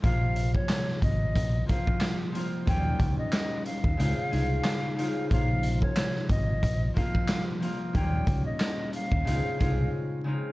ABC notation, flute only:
X:1
M:4/4
L:1/16
Q:"Swing 16ths" 1/4=91
K:Bbdor
V:1 name="Flute"
f3 d3 e4 f3 z3 | g3 e3 f8- f2 | f3 d3 e4 f3 z3 | g3 e3 f6 z4 |]